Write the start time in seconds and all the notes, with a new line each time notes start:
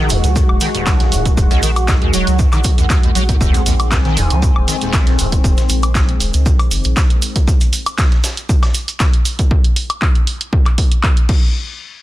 Already playing: D#3 G#3 F#4 G#4 F#5 C#6
0.00 D#3
0.09 D#1 D#2, open hi-hat, cabasa, shaker
0.24 C#2 F#3, closed hi-hat, cabasa
0.36 F2, kick, cabasa, shaker
0.49 D#1, high woodblock
0.61 D#3, snare, open hi-hat, cabasa, shaker
0.75 D#1, closed hi-hat, cabasa
0.87 C#2, kick, snare, clap, cabasa, shaker
1.00 D#1, snare, closed hi-hat
1.12 D#1 A#2, open hi-hat, cabasa, shaker
1.25 kick, closed hi-hat, cabasa
1.37 D#1 F2, kick, cabasa, shaker
1.51 C#2, snare, closed hi-hat, cabasa
1.63 A#1 D#3, open hi-hat, cabasa, shaker
1.76 closed hi-hat, cabasa, high woodblock
1.88 D#2, kick, snare, clap, cabasa, shaker
2.02 D#2, closed hi-hat
2.13 D#1 F#3, open hi-hat, cabasa, shaker
2.27 C#2, closed hi-hat, cabasa
2.39 F2, kick, cabasa, shaker
2.52 D#3, clap, closed hi-hat, cabasa, high woodblock
2.64 kick, open hi-hat, cabasa, shaker
2.78 D#2, closed hi-hat, cabasa
2.90 D#2, kick, snare, clap, cabasa, shaker
3.03 D#2, closed hi-hat
3.15 A#1 F#3, open hi-hat, cabasa, shaker
3.29 D#2, kick, closed hi-hat, cabasa
3.41 D#1 D#2 C4, kick, cabasa, shaker
3.54 C#2, closed hi-hat, cabasa
3.65 A#1 D#2 G#5, open hi-hat, cabasa, shaker
3.80 closed hi-hat, cabasa, high woodblock
3.92 D#2, kick, snare, clap, cabasa, shaker
4.05 D#3, snare, closed hi-hat
4.17 D#1 D#2, open hi-hat, cabasa, shaker
4.30 C#2 F#3, closed hi-hat, cabasa
4.42 F2, kick, cabasa, shaker
4.56 D#1, high woodblock
4.68 D#3, snare, open hi-hat, cabasa, shaker
4.81 D#1, closed hi-hat, cabasa
4.93 C#2, kick, snare, clap, cabasa, shaker
5.07 D#1, snare, closed hi-hat
5.19 D#1 A#2, open hi-hat, cabasa, shaker
5.32 kick, closed hi-hat, cabasa
5.44 D#1, kick, cabasa, shaker
5.57 snare, closed hi-hat, cabasa
5.69 A#1, open hi-hat, cabasa, shaker
5.83 closed hi-hat, cabasa, high woodblock
5.95 kick, snare, clap, cabasa, shaker
6.09 closed hi-hat
6.20 D#1, open hi-hat, cabasa, shaker
6.34 C#2, closed hi-hat, cabasa
6.46 kick, cabasa, shaker
6.59 closed hi-hat, high woodblock
6.71 F#1, open hi-hat, cabasa, shaker
6.84 A#1, closed hi-hat, cabasa
6.97 kick, snare, clap, cabasa, shaker
7.10 closed hi-hat
7.22 open hi-hat, cabasa, shaker
7.36 kick, closed hi-hat, cabasa
7.48 kick, cabasa, shaker
7.61 closed hi-hat, cabasa
7.73 open hi-hat, cabasa, shaker
7.86 closed hi-hat, cabasa, high woodblock
7.98 kick, snare, clap, cabasa, shaker
8.12 snare, closed hi-hat
8.24 snare, open hi-hat, cabasa, shaker
8.37 closed hi-hat, cabasa
8.49 kick, cabasa, shaker
8.63 snare, high woodblock, shaker
8.74 open hi-hat, cabasa
8.88 closed hi-hat, cabasa, shaker
9.00 kick, snare, clap, cabasa, shaker
9.13 closed hi-hat
9.25 open hi-hat, cabasa, shaker
9.39 kick, closed hi-hat, cabasa
9.51 kick
9.64 closed hi-hat
9.76 open hi-hat
9.90 closed hi-hat, high woodblock
10.02 kick, clap
10.15 closed hi-hat
10.27 open hi-hat
10.41 closed hi-hat
10.53 kick
10.66 clap, closed hi-hat, high woodblock
10.78 kick, open hi-hat
10.92 closed hi-hat
11.03 kick, clap
11.17 closed hi-hat
11.29 kick, crash